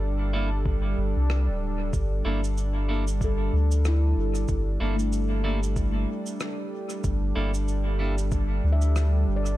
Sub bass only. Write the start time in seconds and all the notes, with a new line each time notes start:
Already playing: G1
0.98 G1
1.16 C2
1.48 D1
1.93 G1
2.25 G1
3.53 D2
4.16 G1
4.49 G1
4.81 G1
7.04 G1
7.36 G1
8.64 D2
9.27 G1